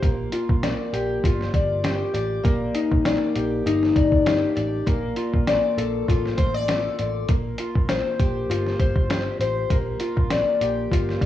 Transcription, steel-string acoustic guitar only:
0.00 2.43 A#3 medium
0.00 0.32 F4 medium
0.00 0.36 G4 medium
0.33 1.23 F4 medium
0.64 1.54 D5 medium
0.93 1.83 G4 medium
1.24 2.51 F4 medium
1.54 2.13 D5 medium
1.84 3.35 G4 medium
2.14 2.78 D5 medium
2.43 4.86 A#3 medium
2.75 3.65 D#4 medium
3.05 3.95 D5 medium
3.36 4.25 G4 medium
3.66 4.93 D#4 medium
3.96 4.55 D5 medium
4.26 4.93 G4 medium
4.56 5.47 D5 medium
4.86 7.29 A#3 medium
5.17 6.08 F4 medium
5.47 6.37 D5 medium
5.78 6.67 A4 medium
6.08 7.59 F4 medium
6.37 6.54 C5 medium
6.54 6.98 D5 medium
6.68 7.35 A4 medium
6.99 7.36 D5 medium
7.29 9.70 A#3 medium
7.59 8.49 F4 medium
7.90 8.78 C5 medium
8.19 9.09 G4 medium
8.50 10.00 F4 medium
8.80 9.39 C5 medium
9.10 10.03 G4 medium
9.41 9.77 C5 medium
9.71 11.26 A#3 medium
10.00 10.90 F4 medium
10.31 11.21 D5 medium
10.61 11.26 G4 medium
10.92 11.26 F4 medium
11.22 11.26 D5 medium

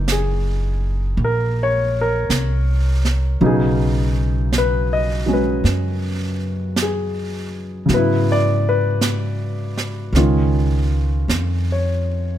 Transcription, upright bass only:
0.00 1.14 F#1 medium
1.17 2.25 A#1 medium
2.30 3.36 C2 medium
3.41 5.60 B1 medium
5.64 7.85 F#2 medium
7.89 10.11 G#2 medium
10.13 11.24 C#2 medium
11.28 12.38 F2 medium

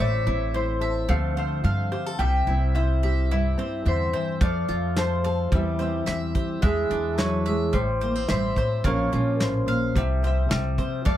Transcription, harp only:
0.00 0.55 C5 medium
0.00 1.86 D5 medium
0.55 2.53 C5 medium
1.10 1.38 F5 medium
1.38 2.81 F5 medium
2.19 3.74 G5 medium
2.75 3.32 E5 medium
3.32 5.04 E5 medium
3.88 4.98 C5 medium
4.43 6.28 D5 medium
4.98 6.96 C5 medium
5.55 5.82 E5 medium
5.82 6.62 E5 medium
6.62 8.34 E5 medium
7.18 7.80 C#5 medium
7.74 8.30 C5 medium
8.30 8.91 C5 medium
8.85 9.48 C#5 medium
9.42 11.17 C5 medium
9.98 10.26 E5 medium
10.27 11.17 E5 medium
11.07 11.17 D5 loud

